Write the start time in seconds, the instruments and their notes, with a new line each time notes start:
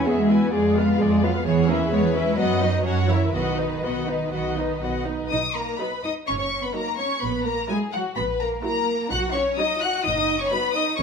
0.06 double bass section E2, viola section G#3 G#4, cello section B3, violin section F#4 G#4 E5
0.19 cello section G#3
0.30 viola section B3 E4, violin section B4 G#5
0.42 cello section B3
0.52 double bass section F2, viola section G#3 G#4, cello section G#3, violin section F4 G#4 D5
0.76 viola section B3 F4, violin section B4 F5
0.98 double bass section F2, viola section G#3 G#4, cello section G#3, violin section G#4 D5
1.22 cello section F#3, viola section B3 F4, violin section B4 F5
1.46 double bass section E2, cello section E3, viola section B3 G#4, violin section G#4 C#5
1.68 cello section A#3, viola section C#4 E4, violin section B4 E5
1.91 double bass section E2, cello section G#3, viola section B3 G#4, violin section B4 C#5
2.05 cello section E3
2.14 viola section C#4 E4, violin section B4 E5
2.27 cello section G#3
2.37 double bass section F#2, cello section F#3, viola section B3 F#4, violin section D#5 F#5
2.61 viola section D#4, violin section B4 D#5
2.84 double bass section F#2, viola section C#4 F#4, violin section C#5 F#5
3.08 cello section E3, viola section E4, violin section A#4 E5
3.32 double bass section B1, cello section D#3, viola section B3 F#4, violin section B4 D#5 F#5
3.58 viola section D#4, violin section B4 D#5
3.83 double bass section B1, viola section B3 F#4, violin section D#5 F#5
4.08 viola section D#4, violin section B4 D#5
4.32 double bass section B1, viola section B3 F#4, violin section D#5 F#5
4.56 viola section D#4, violin section B4 D#5
4.81 double bass section B1, viola section B3 F#4, violin section D#5 F#5
5.05 viola section D#4, violin section B4 D#5
5.30 double bass section B1, cello section D#4, violin section D#5 D#6
5.55 cello section A#3, violin section A#4 A#5
5.79 viola section F#3 D#4, cello section B3, violin section B4 B5
6.03 cello section D#4, violin section D#5 D#6
6.26 double bass section F#1, cello section C#4, violin section C#5 C#6
6.38 cello section C#4, violin section C#5 C#6
6.63 cello section B3, violin section B4 B5
6.74 viola section F#3 D#4, cello section A#3, violin section A#4 A#5
6.97 cello section C#4, violin section C#5 C#6
7.21 double bass section A#1, cello section B3, violin section B4 B5
7.45 cello section A#3, violin section A#4 A#5
7.69 viola section F#3 E4, cello section G#3, violin section G#4 G#5
7.91 cello section F#3, violin section F#4 F#5
8.15 double bass section A#1, cello section B3, violin section B4 B5
8.40 cello section A#3, violin section A#4 A#5
8.63 viola section F#3 E4, cello section A#3, violin section A#4 A#5
9.10 double bass section B1, cello section F#4, violin section F#5 F#6
9.32 cello section C#4, violin section C#5 C#6
9.56 viola section F#3 D#4, cello section D#4, violin section D#5 D#6
9.80 cello section F#4, violin section F#5 F#6
10.04 double bass section F#1, cello section D#4, violin section D#5 D#6
10.16 cello section D#4, violin section D#5 D#6
10.39 cello section C#4, violin section C#5 C#6
10.50 viola section F#3 D#4, cello section B3, violin section B4 B5
10.73 cello section D#4, violin section D#5 D#6
10.96 double bass section D#2, cello section C#4, violin section C#5 C#6